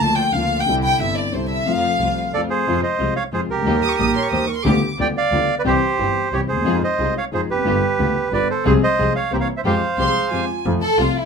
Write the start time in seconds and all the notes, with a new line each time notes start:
0.00 D2 D3 F3 A#3 D4 F4 A5
0.16 G5
0.32 D2 D3 F3 A#3 D4 F4 F5
0.37 F4
0.60 G5
0.66 C2 C3 D3 G3 C4 D4 E4
0.84 G5
0.99 G1 G2 D3 G3 C4 D4 E4 E5
1.03 E4
1.17 D5
1.32 C2 C3 D3 G3 C4 D4 E4 C5
1.50 E5
1.64 F2 C3 F3 A3 C4 F4 F5
1.68 F4
1.98 C2 C3 F3 A3 C4 F4
2.03 F4
2.32 F2 C3 F3 A3 C4 F4 A4 D5
2.36 F4
2.50 G#4 C5
2.66 F2 C3 F3 G#3 C4 F4
2.83 C5 D#5
2.98 C2 C3 F3 G#3 C4 F4
3.16 C#5 F5
3.32 F2 C3 F3 G#3 C4 F4 G#4 C5
3.49 C#2 G4 A#4
3.54 C2 C#2
3.62 D2 D#2 A#3 D#4 G4
3.67 D#2 D#3 G3 A#3 G4
3.82 G4 D#6
3.89 C#6
3.98 A#1 A#2 D#3 G3 A#3 D#4 G4 D#6
4.15 C#5 C6
4.23 C#6
4.31 D#2 D#3 G3 A#3 D#4 G4 C5 D#6
4.47 A#4 C#6
4.56 C6
4.64 D2 D3 G3 B3 F4 G4 D6
4.97 D2 D3 G3 B3 F4 G4 D5 G5
5.17 D5 F5
5.31 D2 D3 G3 B3 F4 G4
5.59 B4 D5
5.64 C2 C3 E3 G3 C4 E4 G4 C5
5.98 G1 G2 E3 G3 C4 E4 G4
6.32 C2 C3 E3 G3 C4 E4 G4 C#5
6.48 D#2 G#4 C5
6.53 D2
6.57 D#2
6.62 E2 F2 D#3 F3 G#3 C4 D#4 F4 G#4
6.66 F2
6.84 C5 D#5
6.99 C2 C3 D#3 G#3 C4 D#4 F4 G#4
7.18 C#5 F5
7.32 F2 D#3 F3 G#3 C4 D#4 F4 G#4 C5
7.50 F1 G4 B4
7.54 E2 F2
7.62 G1 F#2 G2 D3 G3 B3 F4
7.66 G1 F4 G4
7.99 D2 D3 G3 B3 F4 G4
8.32 G1 G2 D3 G3 B3 F4 G4 B4 D5
8.50 A4 C5
8.65 C2 C3 F3 G#3 C4 F4 G#4 C5
8.83 C5 D#5
8.98 C2 C3 F3 G#3 C4 F4 G#4
9.16 C#5 F5
9.31 C2 C3 E3 A#3 C4 E4 G4 A#4 C5
9.40 C#5 F5
9.57 C5 E5
9.64 F2 F3 G#3 C4 F4 G4 C5 F5
9.98 C2 C3 F3 G#3 C4 F4 G4 C5 C6
10.06 G#4
10.31 F2 F3 G#3 C4 F4 G4 G#5
10.65 F2 C3 F3 A3 F4
10.81 A4
10.98 C2 C3 F3 A3 F4
11.16 E4